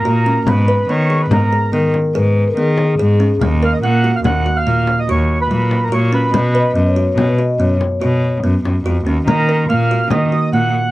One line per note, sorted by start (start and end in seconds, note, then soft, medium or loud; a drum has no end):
0.00 0.49 A#4 medium
0.05 0.41 A#2 medium
0.05 0.22 F#4 medium
0.26 0.43 C#4 medium
0.47 0.83 G#2 medium
0.47 0.64 B3 medium
0.47 0.91 B4 medium
0.47 frame drum medium
0.68 0.85 B4 medium
0.89 1.25 D#3 medium
0.89 1.06 B3 medium
0.89 1.21 C#5 medium
1.10 1.27 G#4 medium
1.22 1.32 B4 medium
1.30 1.49 G#2 medium
1.30 1.48 B3 medium
1.30 1.71 A#4 medium
1.30 frame drum medium
1.53 1.69 G#4 medium
1.73 1.91 D#3 medium
1.73 2.07 B3 medium
1.73 2.16 A#4 medium
1.94 frame drum soft
2.15 2.51 G#2 medium
2.15 2.49 G#4 medium
2.15 2.47 B4 medium
2.48 2.52 A#4 medium
2.57 2.93 D#3 medium
2.57 2.91 B3 medium
2.57 3.37 G#4 medium
2.78 frame drum soft
2.99 3.35 G#2 medium
2.99 3.16 G#4 medium
3.20 3.37 C#4 medium
3.41 3.77 D#2 medium
3.41 3.58 A#3 medium
3.41 frame drum medium
3.63 3.79 A#4 medium
3.63 3.73 F5 medium
3.73 3.78 D#5 medium
3.83 4.19 A#2 medium
3.83 4.00 A#3 medium
3.83 4.15 F#5 medium
4.04 4.21 F#4 medium
4.16 4.20 F5 medium
4.24 4.43 D#2 medium
4.24 4.42 A#3 medium
4.24 4.57 F#5 medium
4.24 frame drum medium
4.46 4.63 F#4 medium
4.57 4.99 F5 medium
4.67 4.85 A#2 medium
4.67 5.01 A#3 medium
4.87 frame drum soft
4.99 5.09 D#5 medium
5.08 5.45 D#2 medium
5.08 5.43 F#4 medium
5.08 5.39 C#5 medium
5.41 5.84 B4 medium
5.50 5.86 A#2 medium
5.50 5.85 F#3 medium
5.71 frame drum soft
5.84 5.93 A#4 medium
5.92 6.28 A#2 medium
5.92 6.09 F#4 medium
5.92 6.12 C#5 medium
6.12 6.30 C#4 medium
6.12 6.73 B4 medium
6.34 6.70 B2 medium
6.34 6.51 B3 medium
6.34 frame drum medium
6.54 6.72 B4 medium
6.54 6.87 D#5 medium
6.54 frame drum soft
6.76 7.12 F#2 medium
6.76 6.93 B3 medium
6.87 7.26 C#5 medium
6.96 7.14 F#4 medium
7.17 7.36 B2 medium
7.17 7.35 B3 medium
7.17 frame drum medium
7.28 7.38 B4 medium
7.38 7.56 F#4 medium
7.38 7.61 D#5 medium
7.59 7.77 F#2 medium
7.59 7.94 B3 medium
7.59 8.40 C#5 medium
7.81 frame drum soft
8.01 8.38 B2 medium
8.01 8.35 F#4 medium
8.01 frame drum soft
8.43 8.62 F#2 medium
8.43 8.78 B3 medium
8.43 frame drum soft
8.64 8.83 F#2 medium
8.64 frame drum soft
8.85 9.04 F2 medium
8.85 9.03 F#4 medium
9.06 9.25 D#2 medium
9.06 9.23 C#4 medium
9.27 9.63 D#3 medium
9.27 9.45 A#3 medium
9.27 9.66 A#4 medium
9.27 frame drum medium
9.49 9.66 A#4 medium
9.69 10.05 A#2 medium
9.69 9.87 A#3 medium
9.69 10.08 F5 medium
9.91 10.08 F#4 medium
10.10 10.29 D#3 medium
10.10 10.28 A#3 medium
10.10 10.50 D#5 medium
10.10 frame drum medium
10.32 10.49 F#4 medium
10.53 10.71 A#2 medium
10.53 10.87 A#3 medium
10.53 10.91 F#5 medium